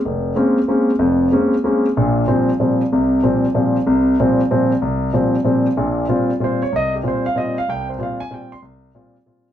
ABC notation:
X:1
M:3/4
L:1/8
Q:"Swing" 1/4=189
K:Fm
V:1 name="Grand piano"
z6 | z6 | z6 | z6 |
z6 | z6 | z4 c d | e G c f e f |
g c f a g c' | z6 |]
V:2 name="Grand piano" clef=bass
F,,,2 [A,B,CD] z [A,B,CD] z | [F,,,F,,]2 [A,B,CD] z [A,B,CD] z | [B,,,B,,]2 [B,,F,G,C] z [B,,F,G,C] z | [C,,C,]2 [B,,F,G,C] z [B,,F,G,C] z |
[C,,C,]2 [B,,F,G,C] z [B,,F,G,C] z | C,,2 [B,,F,G,C] z [B,,F,G,C] z | [B,,,B,,]2 [B,,G,CF] z [B,,G,CF] z | C,,2 [B,,G,CF] z [B,,G,CF] z |
C,,2 [B,,G,CF] z [B,,G,CF] z | C,,2 [B,,G,CF] z [B,,G,CF] z |]